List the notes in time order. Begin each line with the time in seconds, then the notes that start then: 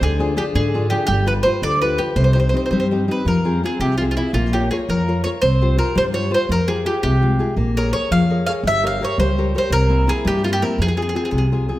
0.01 D2 D3 G#4
0.19 D4 F4 G#4
0.36 D4 F4 G4 G#4
0.55 G#2 D3 G#4
0.74 D4 F4 G#4
0.90 D4 F4 G4 G#4
1.07 G1 G3 G4
1.26 F4 G4 B4
1.43 F4 G4 B4 C5
1.62 D2 D3 D5
1.82 F4 G4 B4
1.98 F4 G4 B4
2.16 C2 C3 C5
2.24 C5
2.33 C4 D#4 G4 C5
2.40 C5
2.49 C5
2.54 C4 D#4 G4 C5
2.66 C5
2.71 G2 G3 C5
2.80 C5
2.91 C4 D#4 G4
3.08 C4 D#4 G4 B4
3.25 F2 F3 A#4
3.45 C4 F4 G#4
3.64 C4 F4 G#4
3.80 C2 C3 G4
3.98 C4 F4 G#4
4.11 F4
4.17 C4 E4 F4 G#4
4.33 A#1 A#3 F4
4.53 F4 G4 A#4 C#5
4.71 F4 G#4 A#4 C#5
4.89 F2 F3 A#4
5.08 F4 A#4 C#5
5.24 F4 A#4 C#5
5.42 C2 C4 C5
5.62 F4 G4 C5
5.77 F4 G4 A#4 C5
5.95 G2 G3 C5
6.12 F4 G4 C5 C#5
6.31 F4 G4 C5
6.49 F2 F3 A#4
6.68 F4 G4 G#4
6.85 F4 G4 G#4
7.03 C2 C3 G4
7.22 G#3 F4 G4
7.39 F4 G4 G#4
7.56 A#1 A#3
7.77 G#4 A#4 C#5
7.93 G#4 A#4 C#5
8.11 F2 F3 F5
8.30 G#4 A#4 C#5
8.46 G#4 A#4 C#5 F5
8.63 G1 G3 E5
8.83 G4 A#4 C#5 F5
9.01 G4 A#4 C#5
9.18 C#2 G3 C5
9.38 G4 A#4 C#5
9.55 G4 A#4 C5 C#5
9.70 C2 C3 A#4
9.89 A#3 C4 E4
10.07 A#3 C4 E4 G#4
10.25 G2 G3 G4
10.44 A#3 C4 E4 F4
10.53 G4
10.62 A#3 C4 E4 A#4
10.78 F2 F3 G#4
10.88 G#4
10.97 C4 F4 G#4
11.02 G#4
11.09 G#4
11.15 C4 F4 G#4
11.25 G#4
11.31 C2 C3 G#4
11.38 G#4
11.52 C4 F4 G#4
11.68 C4 F4 G#4